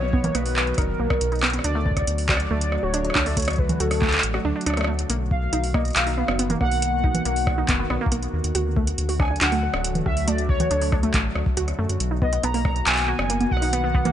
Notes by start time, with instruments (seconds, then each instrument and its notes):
Already playing: analog synth bass B1, ambient pad D#3 F#3 B3 F#4, soft synth lead C#5
0.02 synth arpeggio sound B3
0.13 synth arpeggio sound B3, kick
0.24 synth arpeggio sound A#3, closed hi-hat, low conga
0.35 analog synth bass B1, synth arpeggio sound A#3, soft synth lead B4, cross-stick, closed hi-hat
0.46 open hi-hat
0.56 clap
0.67 closed hi-hat
0.74 analog synth bass F#1, soft synth lead A#4, cross-stick, closed hi-hat
0.78 synth arpeggio sound D#4, kick, closed hi-hat
0.82 closed hi-hat
0.99 analog synth bass B1, synth arpeggio sound A#3
1.10 kick, cross-stick
1.21 analog synth bass B1, closed hi-hat
1.32 synth arpeggio sound D#4, closed hi-hat
1.35 closed hi-hat
1.39 clap, closed hi-hat
1.43 synth arpeggio sound B3, closed hi-hat
1.46 closed hi-hat
1.50 closed hi-hat
1.53 synth arpeggio sound B3, closed hi-hat
1.59 cross-stick
1.64 analog synth bass D2, ambient pad D3 F#3 A3 F#4, synth arpeggio sound D4, soft synth lead D5, closed hi-hat
1.75 synth arpeggio sound A3
1.86 synth arpeggio sound A3, kick
1.91 kick
1.97 kick, cross-stick, closed hi-hat
2.02 kick
2.07 analog synth bass D2, closed hi-hat
2.18 open hi-hat
2.29 synth arpeggio sound F#4, soft synth lead D5, kick, cross-stick, clap
2.32 cross-stick
2.34 cross-stick
2.37 cross-stick, closed hi-hat
2.51 analog synth bass D2, synth arpeggio sound A3
2.61 closed hi-hat
2.72 cross-stick
2.83 analog synth bass D1, synth arpeggio sound F#4, soft synth lead C#5
2.94 synth arpeggio sound D4, closed hi-hat
3.05 synth arpeggio sound D4, closed hi-hat
3.10 cross-stick
3.15 analog synth bass D2, synth arpeggio sound D4, kick, clap
3.26 synth arpeggio sound A3, soft synth lead D5, open hi-hat
3.37 synth arpeggio sound A3, soft synth lead C#5, kick, closed hi-hat
3.40 closed hi-hat
3.42 closed hi-hat
3.45 cross-stick, closed hi-hat
3.48 closed hi-hat
3.50 closed hi-hat
3.53 closed hi-hat
3.56 soft synth lead B4, kick, closed hi-hat
3.69 closed hi-hat, low conga
3.80 analog synth bass D2, synth arpeggio sound F#4, soft synth lead A4, closed hi-hat
3.91 cross-stick, open hi-hat
4.02 synth arpeggio sound A3, kick, clap
4.07 clap
4.12 clap, closed hi-hat
4.18 clap
4.23 analog synth bass A1, closed hi-hat
4.34 synth arpeggio sound F#4, cross-stick
4.45 analog synth bass D2, synth arpeggio sound D4
4.56 synth arpeggio sound D4
4.61 closed hi-hat
4.66 analog synth bass D2, synth arpeggio sound D4, cross-stick, closed hi-hat
4.70 cross-stick
4.74 cross-stick
4.77 synth arpeggio sound A3, cross-stick, closed hi-hat
4.81 cross-stick
4.84 synth arpeggio sound A3, cross-stick
4.99 closed hi-hat
5.10 analog synth bass B1, ambient pad D#3 A#3 B3 F#4, synth arpeggio sound A#3, closed hi-hat
5.31 soft synth lead F5, kick
5.53 analog synth bass B1, synth arpeggio sound D#4, closed hi-hat
5.64 open hi-hat
5.74 synth arpeggio sound A#3, soft synth lead D#5, kick, cross-stick
5.85 closed hi-hat
5.88 closed hi-hat
5.91 closed hi-hat
5.93 clap, closed hi-hat
5.96 analog synth bass B1, soft synth lead F5, closed hi-hat
6.01 closed hi-hat
6.04 synth arpeggio sound D#4, closed hi-hat, open hi-hat
6.18 synth arpeggio sound B3
6.28 analog synth bass F#1, synth arpeggio sound B3, cross-stick
6.39 synth arpeggio sound B3, closed hi-hat
6.50 synth arpeggio sound A#3, closed hi-hat, low conga
6.61 analog synth bass B1, synth arpeggio sound A#3, soft synth lead F#5, kick, cross-stick
6.71 open hi-hat
6.82 closed hi-hat
7.04 synth arpeggio sound D#4, kick
7.15 closed hi-hat, low conga
7.25 analog synth bass B1, synth arpeggio sound A#3, closed hi-hat
7.36 open hi-hat
7.47 kick, cross-stick
7.58 synth arpeggio sound D#4
7.69 analog synth bass F#1, synth arpeggio sound B3, kick, clap, closed hi-hat
7.79 synth arpeggio sound B3
7.90 analog synth bass B1, synth arpeggio sound B3, cross-stick
8.01 synth arpeggio sound A#3
8.06 kick
8.12 analog synth bass B1, synth arpeggio sound A#3, closed hi-hat
8.23 closed hi-hat
8.33 analog synth bass D#2
8.44 analog synth bass D#2, closed hi-hat
8.55 analog synth bass D2, ambient pad D3 F#3 A3, synth arpeggio sound F#4, closed hi-hat
8.76 synth arpeggio sound A3, kick
8.87 closed hi-hat
8.98 analog synth bass D2, closed hi-hat
9.09 synth arpeggio sound F#4, open hi-hat
9.20 synth arpeggio sound D4, soft synth lead G#5, kick, cross-stick
9.22 cross-stick
9.25 cross-stick
9.28 synth arpeggio sound D4, cross-stick
9.36 closed hi-hat
9.41 analog synth bass D2, synth arpeggio sound D4, soft synth lead F#5, clap, closed hi-hat
9.52 synth arpeggio sound A3, open hi-hat
9.63 synth arpeggio sound A3
9.74 analog synth bass D1, cross-stick
9.84 closed hi-hat
9.95 closed hi-hat, low conga
10.06 analog synth bass D2, synth arpeggio sound F#4, soft synth lead E5, kick, cross-stick
10.17 open hi-hat
10.28 synth arpeggio sound A3, soft synth lead D5, closed hi-hat
10.38 closed hi-hat
10.49 soft synth lead C#5, kick
10.60 synth arpeggio sound F#4, closed hi-hat, low conga
10.71 analog synth bass D2, synth arpeggio sound D4, closed hi-hat
10.82 synth arpeggio sound D4, open hi-hat
10.92 synth arpeggio sound D4, kick, cross-stick
11.03 synth arpeggio sound A3, closed hi-hat
11.14 analog synth bass A1, synth arpeggio sound A3, kick, clap, closed hi-hat
11.35 analog synth bass D2, cross-stick
11.46 kick
11.57 analog synth bass D2, synth arpeggio sound F#4, closed hi-hat
11.68 cross-stick, closed hi-hat
11.79 analog synth bass F#2, synth arpeggio sound A3
11.89 analog synth bass F#2, closed hi-hat
12.00 analog synth bass B1, ambient pad D#3 A#3 B3 F#4, closed hi-hat
12.11 synth arpeggio sound D#4
12.22 synth arpeggio sound B3, soft synth lead D#5, kick
12.33 synth arpeggio sound B3, closed hi-hat
12.43 analog synth bass B1, synth arpeggio sound B3, soft synth lead A#5, closed hi-hat
12.54 synth arpeggio sound A#3, open hi-hat
12.65 synth arpeggio sound A#3, kick, cross-stick
12.76 closed hi-hat
12.87 analog synth bass B1, soft synth lead G#5, clap, closed hi-hat
12.89 clap
12.92 clap
12.95 clap
12.97 clap, open hi-hat
13.00 clap
13.03 clap
13.05 synth arpeggio sound F#4, clap
13.19 analog synth bass F#1, cross-stick
13.30 synth arpeggio sound A#3, closed hi-hat
13.41 closed hi-hat, low conga
13.51 analog synth bass B1, soft synth lead F#5, kick
13.57 cross-stick
13.62 synth arpeggio sound D#4, open hi-hat
13.73 synth arpeggio sound B3, closed hi-hat
13.84 synth arpeggio sound B3
13.95 synth arpeggio sound B3, kick
14.05 synth arpeggio sound A#3, closed hi-hat, low conga